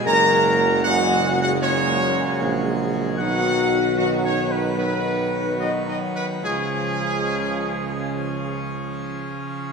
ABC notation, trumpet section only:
X:1
M:4/4
L:1/16
Q:1/4=75
K:F#
V:1 name="Trumpet section"
a4 f3 f c6 z2 | f4 (3f2 c2 B2 B4 (3d2 d2 B2 | G12 z4 |]